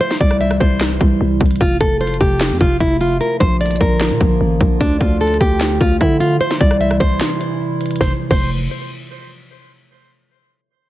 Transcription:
0.01 C3 E3 G3 E4 C5, closed hi-hat
0.11 snare
0.21 C2 D5, kick, closed hi-hat
0.31 cross-stick
0.41 E5, closed hi-hat
0.51 cross-stick
0.60 C2 C5, kick, closed hi-hat
0.81 snare, clap, closed hi-hat
1.01 C2, kick, closed hi-hat
1.21 C2
1.41 C2, kick, closed hi-hat
1.46 closed hi-hat
1.51 closed hi-hat
1.56 closed hi-hat
1.61 F1 C3 F3 A3 F4, kick, closed hi-hat
1.81 F1 A4, kick, closed hi-hat
2.01 C5, closed hi-hat
2.07 closed hi-hat
2.14 closed hi-hat
2.21 F1 G4, kick, closed hi-hat
2.41 snare, clap, closed hi-hat
2.51 F2
2.61 F1 F4, kick, closed hi-hat
2.80 F1 E4, kick, closed hi-hat
3.01 F4, closed hi-hat
3.21 D3 A#3 A#4, closed hi-hat
3.40 A#1 C5, kick, closed hi-hat
3.61 D5, closed hi-hat
3.66 closed hi-hat
3.71 closed hi-hat
3.76 closed hi-hat
3.81 A#1 A#4, kick, closed hi-hat
4.01 snare, clap, closed hi-hat
4.11 A#2
4.21 A#1, kick, closed hi-hat
4.41 A1
4.61 A#1, kick, closed hi-hat
4.81 D2 A3 D4, kick, closed hi-hat
5.01 D2 F4, kick, closed hi-hat
5.21 A4, closed hi-hat
5.27 closed hi-hat
5.34 closed hi-hat
5.41 D2 G4, kick, closed hi-hat
5.61 snare, clap, closed hi-hat
5.81 D2 F4, kick, closed hi-hat
6.01 D3 E4, kick, closed hi-hat
6.20 F4, closed hi-hat
6.41 C3 E3 G3 E4 C5, closed hi-hat
6.51 snare
6.61 C2 D5, kick, closed hi-hat
6.71 cross-stick
6.81 E5, closed hi-hat
6.91 cross-stick
7.00 C2 C5, kick, closed hi-hat
7.21 snare, clap, closed hi-hat
7.41 closed hi-hat
7.81 closed hi-hat
7.86 closed hi-hat
7.91 closed hi-hat
7.96 closed hi-hat
8.01 F1 C5, kick, snare
8.31 F1 C5, kick, crash

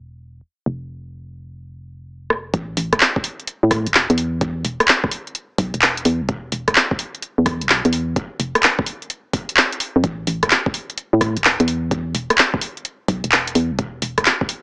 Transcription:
Already playing: E1
0.66 F1
2.30 cross-stick
2.54 A1, kick, closed hi-hat
2.77 A1, open hi-hat
2.93 kick, cross-stick, closed hi-hat
3.00 clap, closed hi-hat
3.16 kick
3.24 open hi-hat
3.40 closed hi-hat
3.47 closed hi-hat
3.63 A2
3.71 kick, cross-stick, open hi-hat
3.86 E1, closed hi-hat
3.94 clap
4.10 E2, closed hi-hat
4.18 open hi-hat
4.41 kick, closed hi-hat
4.65 E1, open hi-hat
4.80 cross-stick, closed hi-hat
4.88 clap, closed hi-hat
5.04 kick, cross-stick
5.11 open hi-hat
5.27 closed hi-hat
5.35 closed hi-hat
5.58 B1, kick, open hi-hat
5.74 E1, closed hi-hat
5.82 clap
5.97 closed hi-hat
6.05 E2, open hi-hat
6.21 B1
6.29 E1, kick, closed hi-hat
6.52 E1, open hi-hat
6.68 kick, cross-stick, closed hi-hat
6.75 clap, closed hi-hat
6.91 kick
6.99 open hi-hat
7.15 closed hi-hat
7.22 closed hi-hat
7.38 E2
7.46 kick, cross-stick, open hi-hat
7.61 B1, closed hi-hat
7.69 clap
7.85 E2, closed hi-hat
7.93 open hi-hat
8.16 kick, closed hi-hat
8.40 F1, open hi-hat
8.55 cross-stick, closed hi-hat
8.63 clap, closed hi-hat
8.79 kick, cross-stick
8.86 open hi-hat
9.02 closed hi-hat
9.10 closed hi-hat
9.33 kick, open hi-hat
9.49 closed hi-hat
9.57 clap
9.72 closed hi-hat
9.80 open hi-hat
9.96 F2
10.04 A1, kick, closed hi-hat
10.27 A1, open hi-hat
10.43 kick, cross-stick, closed hi-hat
10.51 clap, closed hi-hat
10.66 kick
10.74 open hi-hat
10.90 closed hi-hat
10.98 closed hi-hat
11.13 A2
11.21 kick, cross-stick, open hi-hat
11.37 E1, closed hi-hat
11.44 clap
11.60 E2, closed hi-hat
11.68 open hi-hat
11.91 kick, closed hi-hat
12.15 E1, open hi-hat
12.30 cross-stick, closed hi-hat
12.38 clap, closed hi-hat
12.54 kick, cross-stick
12.61 open hi-hat
12.77 closed hi-hat
12.85 closed hi-hat
13.08 B1, kick, open hi-hat
13.24 E1, closed hi-hat
13.32 clap
13.47 closed hi-hat
13.55 E2, open hi-hat
13.71 B1
13.79 E1, kick, closed hi-hat
14.02 E1, open hi-hat
14.18 kick, cross-stick, closed hi-hat
14.25 clap, closed hi-hat
14.41 kick
14.49 open hi-hat

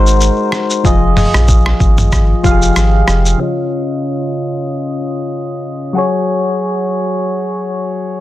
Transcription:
Already playing: G#1 G#3 D#4 F#4 A#4 C5
0.07 shaker
0.21 shaker
0.52 cross-stick, shaker
0.70 shaker
0.83 F1 F3 F4 G#4 D#5, kick, shaker
1.15 F3 F4 G#4 D#5, mid tom, open hi-hat, shaker
1.34 A#1, cross-stick, shaker
1.48 kick, shaker
1.66 cross-stick
1.80 G#1, kick, shaker
1.98 mid tom, shaker
2.12 kick, cross-stick, shaker
2.43 F1 F3 F4 G4 F5, kick, shaker
2.51 G#4
2.62 shaker
2.76 G#1, cross-stick, shaker
3.08 F1, cross-stick, shaker
3.26 shaker
3.38 C#3 C#4 F4
3.43 D#5
5.93 F#3 F#4 G#4
5.98 C#5

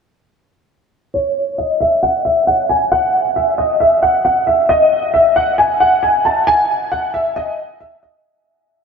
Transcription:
1.14 C#5
1.58 D#5
1.80 E5
2.03 F#5
2.25 E5
2.47 F#5
2.69 G#5
2.92 F#5
3.36 E5
3.58 D#5
3.80 E5
4.03 F#5
4.25 F#5
4.47 E5
4.69 D#5
5.14 E5
5.36 F#5
5.58 G#5
5.80 F#5
6.03 G#5
6.25 A5
6.47 G#5
6.92 F#5
7.14 E5
7.36 D#5
7.80 E5
8.03 D#5

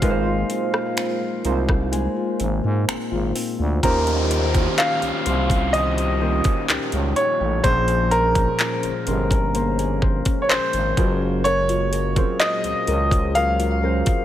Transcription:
Already playing: A#2 G#3 C4 F4 F5
0.01 G#1 G#3 A#3 D#4 F4 A#4 B4, kick, closed hi-hat
0.10 C5
0.26 F4
0.49 C4, closed hi-hat
0.73 F4, cross-stick
0.97 C4, finger snap, closed hi-hat
1.21 F4
1.45 C2 G#3 C4 D#4 F4 A#4 C5, closed hi-hat
1.68 F4, kick, cross-stick
1.92 G#3 D#4, closed hi-hat
2.16 F4
2.40 G#1 C4, closed hi-hat
2.64 G#2 F4
2.88 G#1 C4, finger snap, closed hi-hat
3.11 G#1 F4
3.35 C4, open hi-hat
3.59 D2 F4
3.82 D#2 A#2 D#3 G3 A#3 C#4 F4 G4 A#4 C5, kick, closed hi-hat, downlifter
4.07 G4, closed hi-hat
4.30 C5, closed hi-hat
4.54 D#3 A#3 C#4 F4 F#4 C5, kick, closed hi-hat
4.63 G4
4.78 G4 F5, clap, closed hi-hat
5.02 C2 C#4, closed hi-hat
5.26 C2 C5, closed hi-hat
5.50 G4, kick, closed hi-hat
5.73 D#3 D#4 C5 D#5, closed hi-hat
5.97 G4, closed hi-hat
6.21 D#3 A#3 C#4 F4 F#4 A#4 C5
6.29 G4
6.44 C#4, kick, closed hi-hat
6.69 C#2 G4, clap, closed hi-hat
6.92 C#2 C#4, closed hi-hat
7.16 C#5, closed hi-hat
7.41 A1 G4
7.64 A#1 A#2 F3 G#3 A#3 C#4 G#4 C5, kick, closed hi-hat
7.88 G#4, closed hi-hat
8.11 A#4 C5, closed hi-hat
8.35 C#4, kick, closed hi-hat
8.59 G#4, clap, closed hi-hat
8.83 G1 C#4, closed hi-hat
9.07 G1 A#2 F3 C#4 G#4 A#4 C5, closed hi-hat
9.31 G#4, kick, closed hi-hat
9.55 A#3 C5, closed hi-hat
9.79 G#4, closed hi-hat
10.02 C5, kick
10.25 C#4, kick, closed hi-hat
10.42 C#5
10.49 G#1 G#4 C5, clap, closed hi-hat
10.73 G#1 C#4, closed hi-hat
10.97 F#1 A#2 F#3 A#3 C#4 F4 G#4 A#4 B4, kick, closed hi-hat
11.21 F4
11.44 F#3 A#4 C#5, closed hi-hat
11.69 F4, closed hi-hat
11.93 A#4, closed hi-hat
12.16 F#3 C4 C#4 F4 G#4 A#4 C5, kick, closed hi-hat
12.40 F4 D#5, clap, closed hi-hat
12.64 C#2 C4, closed hi-hat
12.87 C#2 A#4, closed hi-hat
13.11 F4, kick, closed hi-hat
13.35 F#3 A#4 F5, closed hi-hat
13.59 F4, closed hi-hat
13.83 F#3 C#4 F4 G#4 A#4 C5
14.06 C4, kick, closed hi-hat

